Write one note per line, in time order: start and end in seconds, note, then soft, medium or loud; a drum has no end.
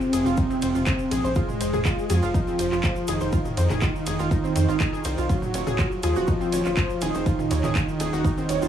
0.00 1.27 C3 loud
0.00 1.27 C4 loud
0.00 shaker soft
0.13 0.24 F1 loud
0.13 0.22 G#4 loud
0.13 closed hi-hat loud
0.13 ride medium
0.13 shaker medium
0.26 0.36 F1 medium
0.26 0.37 F4 loud
0.26 shaker soft
0.37 0.43 D#4 medium
0.37 kick loud
0.37 ride medium
0.37 shaker medium
0.50 0.59 C4 medium
0.50 shaker soft
0.62 0.73 F1 medium
0.62 0.68 C5 medium
0.62 closed hi-hat loud
0.62 ride medium
0.62 shaker medium
0.75 0.85 F1 medium
0.75 0.84 F4 medium
0.75 shaker soft
0.86 0.96 C5 medium
0.86 kick loud
0.86 clap loud
0.86 ride medium
0.86 shaker medium
0.99 shaker soft
1.11 1.22 A#1 medium
1.11 1.21 G#4 loud
1.11 closed hi-hat loud
1.11 ride medium
1.11 shaker medium
1.24 1.34 A#1 medium
1.24 1.35 C5 medium
1.24 shaker soft
1.35 2.10 G#3 loud
1.35 1.45 F4 medium
1.35 2.11 G#4 loud
1.35 kick loud
1.35 ride medium
1.35 shaker medium
1.49 mid tom medium
1.49 shaker soft
1.61 1.71 F1 loud
1.61 1.66 C5 medium
1.61 closed hi-hat loud
1.61 ride medium
1.61 shaker medium
1.73 1.83 F1 medium
1.73 1.85 G#4 loud
1.73 mid tom medium
1.73 shaker soft
1.85 1.95 F4 medium
1.85 kick loud
1.85 clap loud
1.85 ride medium
1.85 shaker medium
1.99 shaker soft
2.10 2.20 F2 loud
2.10 3.08 F3 loud
2.10 3.10 F4 loud
2.10 2.19 G#4 loud
2.10 closed hi-hat loud
2.10 ride medium
2.10 shaker medium
2.22 2.32 F1 medium
2.22 2.34 F4 loud
2.22 shaker soft
2.34 2.40 D#4 medium
2.34 kick loud
2.34 ride medium
2.34 shaker medium
2.47 2.56 C4 medium
2.47 shaker soft
2.59 2.70 F1 medium
2.59 2.65 C5 medium
2.59 closed hi-hat loud
2.59 ride medium
2.59 shaker loud
2.72 2.82 F1 medium
2.72 2.80 F4 medium
2.72 clap soft
2.72 shaker soft
2.83 2.93 C5 medium
2.83 kick loud
2.83 clap loud
2.83 ride medium
2.83 shaker medium
2.96 shaker soft
3.07 3.19 F1 medium
3.07 5.29 D#3 loud
3.07 5.31 D#4 loud
3.07 3.17 G#4 loud
3.07 closed hi-hat loud
3.07 ride medium
3.07 shaker loud
3.21 3.31 F1 medium
3.21 3.32 C5 medium
3.21 shaker soft
3.32 3.42 F4 medium
3.32 kick loud
3.32 ride medium
3.32 shaker medium
3.45 mid tom medium
3.45 shaker soft
3.57 3.68 F2 loud
3.57 3.63 C5 medium
3.57 closed hi-hat loud
3.57 ride medium
3.57 shaker loud
3.70 3.80 F1 medium
3.70 3.81 G#4 loud
3.70 clap soft
3.70 mid tom medium
3.70 shaker soft
3.82 3.91 F4 medium
3.82 kick loud
3.82 clap loud
3.82 ride medium
3.82 shaker medium
3.95 shaker soft
4.06 4.17 F1 loud
4.06 4.16 G#4 loud
4.06 closed hi-hat loud
4.06 ride medium
4.06 shaker loud
4.19 4.29 F1 medium
4.19 4.31 F4 loud
4.19 shaker soft
4.31 4.37 D#4 medium
4.31 kick loud
4.31 ride soft
4.31 shaker soft
4.44 4.52 C4 medium
4.44 shaker soft
4.56 4.66 F2 medium
4.56 4.65 C5 medium
4.56 closed hi-hat loud
4.56 ride medium
4.56 shaker loud
4.69 4.78 G#1 medium
4.69 4.74 F4 loud
4.69 shaker soft
4.80 4.92 G#4 medium
4.80 kick loud
4.80 clap loud
4.80 ride medium
4.80 shaker soft
4.93 5.02 G#4 medium
4.93 shaker soft
5.04 5.16 C2 loud
5.04 5.14 C5 medium
5.04 closed hi-hat loud
5.04 ride medium
5.04 shaker loud
5.18 5.28 C2 medium
5.18 5.28 F4 medium
5.18 shaker soft
5.29 5.94 F#3 loud
5.29 5.39 F4 medium
5.29 5.94 F#4 loud
5.29 kick loud
5.29 ride medium
5.29 shaker medium
5.42 mid tom medium
5.42 shaker soft
5.54 5.65 D#1 loud
5.54 5.60 C#5 medium
5.54 closed hi-hat loud
5.54 ride medium
5.54 shaker loud
5.67 5.77 D#1 medium
5.67 5.78 G#4 loud
5.67 mid tom medium
5.67 shaker soft
5.79 5.88 F4 medium
5.79 kick loud
5.79 clap loud
5.79 ride medium
5.79 shaker soft
5.92 shaker soft
6.03 6.14 D#2 medium
6.03 7.02 F3 loud
6.03 7.03 F4 loud
6.03 6.13 G#4 loud
6.03 closed hi-hat loud
6.03 ride medium
6.03 shaker medium
6.16 6.26 D#1 medium
6.16 6.27 F#4 loud
6.16 shaker soft
6.27 6.33 D#4 medium
6.27 kick loud
6.27 ride medium
6.27 shaker medium
6.41 6.49 C4 medium
6.41 shaker soft
6.52 6.63 D#1 medium
6.52 6.58 C#5 medium
6.52 closed hi-hat loud
6.52 ride medium
6.52 shaker loud
6.65 6.75 D#1 medium
6.65 6.74 F4 medium
6.65 clap soft
6.65 shaker soft
6.77 6.86 C5 medium
6.77 kick loud
6.77 clap loud
6.77 ride medium
6.77 shaker medium
6.90 shaker soft
7.01 7.12 D#1 loud
7.01 8.68 D#3 loud
7.01 8.68 D#4 loud
7.01 7.11 G#4 loud
7.01 closed hi-hat loud
7.01 ride medium
7.01 shaker medium
7.14 7.24 D#1 medium
7.14 7.26 C5 medium
7.14 shaker soft
7.26 7.36 F4 medium
7.26 kick loud
7.26 ride medium
7.26 shaker medium
7.39 mid tom medium
7.39 shaker soft
7.51 7.62 D#2 loud
7.51 7.56 C#5 medium
7.51 closed hi-hat loud
7.51 ride medium
7.51 shaker medium
7.64 7.73 D#1 medium
7.64 7.75 G#4 loud
7.64 clap soft
7.64 mid tom medium
7.64 shaker soft
7.75 7.85 F4 medium
7.75 kick loud
7.75 clap loud
7.75 ride medium
7.75 shaker medium
7.89 shaker soft
8.00 8.11 D#1 medium
8.00 8.09 G#4 loud
8.00 closed hi-hat loud
8.00 ride medium
8.00 shaker medium
8.13 8.23 D#1 medium
8.13 8.24 F#4 loud
8.13 shaker soft
8.25 8.30 D#4 medium
8.25 kick loud
8.25 ride medium
8.25 shaker medium
8.37 8.46 C4 medium
8.37 shaker soft
8.49 8.60 D#1 medium
8.49 8.55 C#5 medium
8.49 closed hi-hat loud
8.49 ride medium
8.49 shaker medium
8.62 8.68 D#1 medium
8.62 8.68 F4 medium
8.62 shaker soft